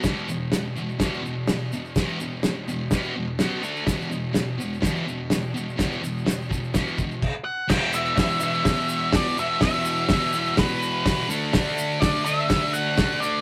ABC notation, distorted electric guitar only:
X:1
M:4/4
L:1/8
Q:1/4=125
K:Dmix
V:1 name="Distorted electric guitar" clef=bass
[E,,B,,E,] [E,,B,,] [E,,B,,] [E,,B,,] [E,,B,,E,] [E,,B,,] [E,,B,,] [E,,B,,] | [E,,B,,E,] [E,,B,,] [E,,B,,] [E,,B,,] [E,,B,,E,] [E,,B,,] [B,,F,B,] [D,A,D] | [E,,B,,E,] [E,,B,,] [E,,B,,] [E,,B,,] [E,,B,,E,] [E,,B,,] [E,,B,,] [E,,B,,] | [E,,B,,E,] [E,,B,,] [E,,B,,] [E,,B,,] [E,,B,,E,] [E,,B,,] z2 |
[E,,B,,E,]2 [E,,B,,E,] [E,,B,,E,] [E,,B,,E,]2 [E,,B,,E,] [E,,B,,E,] | [E,,B,,E,]2 [E,,B,,E,] [E,,B,,E,] [E,,B,,E,]2 [E,,B,,E,] [D,A,D] | [D,A,D]2 [D,A,D] [D,A,D] [D,A,D]2 [D,A,D] [D,A,D] |]